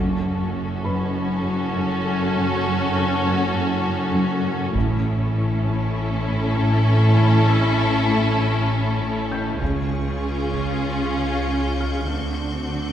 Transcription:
0.00 4.71 F#1 medium
0.00 0.11 F#2 medium
0.00 4.70 F#2 medium
0.00 4.71 C#4 medium
0.00 4.71 F#4 medium
0.00 4.71 A4 medium
0.00 1.40 C#6 soft
0.23 0.41 F#3 soft
0.54 0.72 F#2 soft
0.84 1.03 F#2 medium
0.84 2.61 B4 soft
0.84 2.61 B5 soft
1.14 1.32 F#2 soft
1.45 1.63 F#2 soft
1.75 1.93 F#2 medium
2.05 2.23 F#3 soft
2.34 2.52 F#2 medium
2.64 2.82 F#3 soft
2.95 3.13 F#2 soft
3.24 3.42 F#2 medium
3.55 3.73 F#2 soft
3.85 4.03 F#2 soft
4.15 4.33 F#2 medium
4.45 4.63 F#3 soft
4.74 9.57 A1 medium
4.74 4.93 A2 medium
4.74 9.57 A2 medium
4.74 9.56 C#4 medium
4.74 9.57 E4 medium
4.74 9.56 A4 medium
4.74 taiko medium
5.04 5.22 A3 soft
5.34 5.52 A2 soft
5.64 5.83 A2 medium
5.94 6.13 A2 soft
6.26 6.44 A2 soft
6.56 6.75 A2 medium
6.87 7.05 A3 soft
7.18 7.36 A2 medium
7.48 7.66 A3 soft
7.48 9.27 E5 soft
7.48 9.27 E6 soft
7.79 7.97 A2 soft
8.09 8.27 A2 medium
8.39 8.57 A2 soft
8.69 8.87 A2 soft
9.00 9.18 A2 medium
9.31 9.49 A3 soft
9.31 11.11 G5 soft
9.31 11.11 G6 soft
9.61 12.07 C#2 soft
9.61 9.79 C#3 soft
9.61 12.06 C#3 soft
9.61 12.06 C#4 medium
9.61 12.06 F4 soft
9.61 12.06 G#4 soft
9.61 12.92 C#6 soft
9.61 taiko medium
9.92 10.10 C#4 soft
10.23 10.41 C#3 soft
10.23 12.92 G6 soft
10.53 10.71 C#3 soft
10.53 taiko soft
10.84 11.02 C#3 soft
11.15 11.34 C#3 soft
11.46 11.65 C#3 soft
11.78 11.97 C#4 soft
11.78 12.92 F6 soft
12.09 12.92 D2 soft
12.09 12.29 D3 soft
12.09 12.92 D3 soft
12.09 12.92 C4 soft
12.09 12.92 D4 soft
12.09 12.92 F#4 soft
12.42 12.61 D4 soft
12.74 12.92 D3 soft

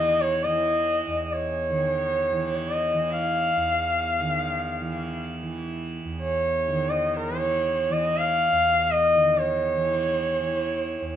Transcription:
0.00 1.07 E2 medium
0.00 1.69 D#3 medium
0.00 0.45 E3 medium
0.00 0.23 D#5 medium
0.21 0.45 C#5 medium
0.44 2.32 E3 medium
0.44 1.24 D#5 medium
1.07 3.56 E2 medium
1.24 1.34 D#5 medium
1.33 2.56 C#5 medium
1.70 4.19 D#3 medium
2.32 2.94 E3 medium
2.56 2.73 C#5 medium
2.73 3.13 D#5 medium
2.94 4.81 E3 medium
3.11 5.20 F5 medium
3.57 6.05 E2 medium
4.20 6.68 D#3 medium
4.81 5.43 E3 medium
5.43 7.30 E3 medium
6.05 8.52 E2 medium
6.22 6.91 C#5 medium
6.68 9.15 D#3 medium
6.89 7.16 D#5 medium
7.17 7.40 A#4 medium
7.30 7.90 E3 medium
7.40 7.94 C#5 medium
7.90 9.77 E3 medium
7.90 8.19 D#5 medium
8.18 8.93 F5 medium
8.52 11.01 E2 medium
8.91 9.40 D#5 medium
9.15 11.16 D#3 medium
9.38 11.16 C#5 medium
9.77 10.39 E3 medium
10.39 11.16 E3 medium
11.02 11.16 E2 medium

